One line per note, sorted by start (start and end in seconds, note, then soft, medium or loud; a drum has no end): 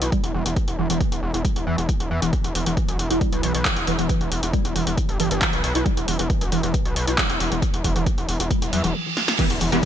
0.02 0.11 B1 medium
0.02 0.08 E4 medium
0.02 closed hi-hat medium
0.12 0.19 G3 medium
0.12 kick loud
0.12 closed hi-hat medium
0.24 0.33 E1 medium
0.24 closed hi-hat medium
0.34 0.44 E1 loud
0.34 0.41 E3 medium
0.46 0.55 E1 medium
0.46 0.52 E3 medium
0.46 closed hi-hat medium
0.56 kick loud
0.56 closed hi-hat medium
0.68 0.77 E1 medium
0.68 closed hi-hat medium
0.79 0.88 E1 loud
0.79 0.82 E3 loud
0.90 0.99 E1 medium
0.90 0.99 E3 loud
0.90 closed hi-hat medium
1.01 kick loud
1.01 closed hi-hat medium
1.12 1.21 E1 medium
1.12 closed hi-hat medium
1.23 1.32 E1 medium
1.34 1.43 E1 medium
1.34 1.40 E4 medium
1.34 closed hi-hat medium
1.45 1.51 G3 medium
1.45 kick loud
1.45 closed hi-hat medium
1.56 1.65 E1 medium
1.56 closed hi-hat medium
1.67 1.76 E2 loud
1.67 1.73 E3 medium
1.78 1.87 E1 medium
1.78 1.84 E3 medium
1.78 closed hi-hat medium
1.89 kick loud
1.89 closed hi-hat medium
2.00 2.09 E1 medium
2.00 closed hi-hat medium
2.11 2.20 E2 loud
2.11 2.15 E3 loud
2.22 2.31 E1 loud
2.22 2.31 E3 loud
2.22 closed hi-hat medium
2.33 kick loud
2.33 closed hi-hat medium
2.44 2.53 E1 medium
2.44 closed hi-hat medium
2.55 2.65 E1 loud
2.55 2.59 E3 loud
2.55 open hi-hat loud
2.66 2.75 E1 medium
2.66 2.76 E3 loud
2.66 closed hi-hat medium
2.77 kick loud
2.77 closed hi-hat medium
2.88 2.97 F#1 medium
2.88 closed hi-hat medium
2.99 3.09 E1 medium
2.99 open hi-hat loud
3.10 3.19 E1 medium
3.10 3.17 E4 medium
3.10 closed hi-hat medium
3.21 3.28 G3 medium
3.21 kick loud
3.21 closed hi-hat medium
3.33 3.42 B1 medium
3.33 closed hi-hat medium
3.43 3.53 B1 loud
3.43 3.50 E3 medium
3.43 open hi-hat loud
3.54 3.64 B1 medium
3.54 3.61 E3 medium
3.54 closed hi-hat medium
3.65 kick loud
3.65 clap loud
3.65 closed hi-hat medium
3.77 3.86 E1 medium
3.77 closed hi-hat medium
3.87 3.97 E1 loud
3.87 3.91 E3 loud
3.87 open hi-hat loud
3.99 4.08 E1 medium
3.99 4.08 E3 loud
3.99 closed hi-hat medium
4.09 kick loud
4.09 closed hi-hat medium
4.21 4.30 E1 medium
4.21 closed hi-hat medium
4.31 4.41 E1 loud
4.31 open hi-hat loud
4.43 4.52 E1 medium
4.43 4.49 E4 medium
4.43 closed hi-hat medium
4.53 4.60 G3 medium
4.53 kick loud
4.53 closed hi-hat medium
4.65 4.74 E1 medium
4.65 closed hi-hat medium
4.75 4.85 E1 loud
4.75 4.82 E3 medium
4.75 open hi-hat loud
4.87 4.96 E1 medium
4.87 4.93 E3 medium
4.87 closed hi-hat medium
4.98 kick loud
4.98 closed hi-hat medium
5.09 5.18 G1 medium
5.09 closed hi-hat medium
5.20 5.29 G1 loud
5.20 5.24 E3 loud
5.20 open hi-hat loud
5.31 5.40 G1 medium
5.31 5.40 E3 loud
5.31 closed hi-hat medium
5.42 kick loud
5.42 clap loud
5.42 closed hi-hat medium
5.53 5.62 B1 medium
5.53 closed hi-hat medium
5.64 5.73 B1 loud
5.64 open hi-hat loud
5.75 5.84 B1 medium
5.75 5.81 E4 medium
5.75 closed hi-hat medium
5.86 5.92 G3 medium
5.86 kick loud
5.86 closed hi-hat medium
5.97 6.06 E1 medium
5.97 closed hi-hat medium
6.08 6.17 E1 loud
6.08 6.14 E3 medium
6.08 open hi-hat loud
6.19 6.28 E1 loud
6.19 6.25 E3 medium
6.19 closed hi-hat medium
6.30 kick loud
6.30 closed hi-hat medium
6.41 6.50 F#1 medium
6.41 closed hi-hat medium
6.52 6.62 E1 loud
6.52 6.56 E3 loud
6.52 open hi-hat loud
6.63 6.72 E1 medium
6.63 6.73 E3 loud
6.63 closed hi-hat medium
6.74 kick loud
6.74 closed hi-hat medium
6.85 6.94 B1 medium
6.85 closed hi-hat medium
6.96 7.06 B1 loud
6.96 open hi-hat loud
7.07 7.17 B1 medium
7.07 7.14 E4 medium
7.07 closed hi-hat medium
7.18 7.25 G3 medium
7.18 kick loud
7.18 clap loud
7.18 closed hi-hat medium
7.30 7.39 E1 medium
7.30 closed hi-hat medium
7.40 7.50 E1 loud
7.40 7.47 E3 medium
7.40 open hi-hat loud
7.52 7.61 E1 medium
7.52 7.58 E3 medium
7.52 closed hi-hat medium
7.62 kick loud
7.62 closed hi-hat medium
7.74 7.83 E1 medium
7.74 closed hi-hat medium
7.84 7.94 E1 loud
7.84 7.88 E3 loud
7.84 kick medium
7.84 open hi-hat loud
7.96 8.05 E1 medium
7.96 8.05 E3 loud
7.96 closed hi-hat medium
8.06 kick loud
8.06 closed hi-hat medium
8.18 8.27 E1 medium
8.18 closed hi-hat medium
8.29 8.38 E1 loud
8.29 open hi-hat loud
8.40 8.49 E1 medium
8.40 8.46 E4 medium
8.40 closed hi-hat medium
8.51 8.57 G3 medium
8.51 kick loud
8.51 closed hi-hat medium
8.51 reverse cymbal medium
8.62 8.71 E1 medium
8.62 closed hi-hat medium
8.73 8.82 E2 loud
8.73 8.79 F#3 medium
8.73 open hi-hat loud
8.84 8.93 E1 loud
8.84 8.90 E3 medium
8.84 closed hi-hat medium
9.17 snare medium
9.28 snare medium
9.39 9.45 E3 loud
9.39 9.45 G3 medium
9.39 9.45 B3 loud
9.39 kick loud
9.39 closed hi-hat medium
9.39 crash loud
9.39 impact medium
9.50 9.59 E1 medium
9.50 closed hi-hat medium
9.61 9.70 E1 loud
9.61 9.65 E3 loud
9.61 open hi-hat loud
9.72 9.81 E1 loud
9.72 9.78 E3 medium
9.72 9.82 E3 loud
9.72 9.78 G3 medium
9.72 9.78 B3 medium
9.72 closed hi-hat medium